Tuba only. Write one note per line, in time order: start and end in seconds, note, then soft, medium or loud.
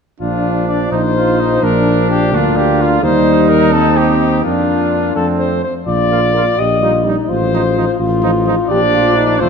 0.21 0.88 A#1 soft
0.91 1.61 A#1 soft
1.63 2.35 A#1 medium
2.33 3.02 D2 medium
3.03 4.41 D#2 medium
4.45 5.15 F2 soft
5.16 5.63 F2 soft
5.87 6.47 A#1 soft
6.58 7.17 A#1 soft
7.29 7.88 A1 medium
7.99 8.58 A1 medium
8.70 9.42 A#1 medium
9.41 9.49 F1 medium